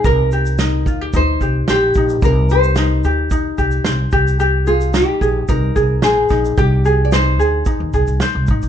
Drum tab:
SH |x-xxx-x-x-x-x-xx|x-xxx-x-x-xxx-xx|x-xxx-x-x-x-x-xx|x-x-x-x-x-xxx-xx|
SD |----o-------o---|----o-------o---|----o-------o-o-|----o-------o---|
BD |o-----o-o-o---o-|o-------o-o---o-|------o-o-o---o-|o-------o-o---o-|